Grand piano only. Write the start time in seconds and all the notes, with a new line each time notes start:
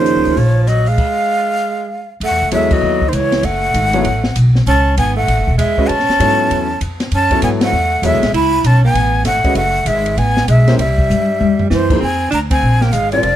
Already playing: F3 A#3 C#4 D#4 G#4
2.52 F#3 B3 E4 A4 C#5
3.94 F#3 B3 E4 A4 C#5
5.78 G#3 C#4 F#4 B4 D#5
6.20 F#3 B3 E4 A4 C#5
7.31 F#3 B3 E4 A4 C#5
8.03 F#3 B3 E4 A4 C#5
9.44 G#3 C#4 F#4 B4 D#5
10.68 A#3 C#4 E4 G4 C5
11.90 F3 A#3 D#4 G#4 C5
13.12 G3 C4 F4 A#4 D5